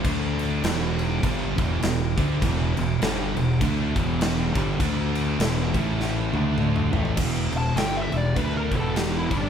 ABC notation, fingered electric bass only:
X:1
M:4/4
L:1/8
Q:"Swing" 1/4=101
K:Em
V:1 name="Fingered electric bass" clef=bass
D,,2 E,,,2 G,,, E,,, E,,, D,, | E,,, E,,, G,,, E,,, D,, E,,,2 G,,, | D,,2 E,,, A,,,2 D,,2 A,,, | E,,, E,,, G,,, E,,, D,, E,,,2 G,,, |]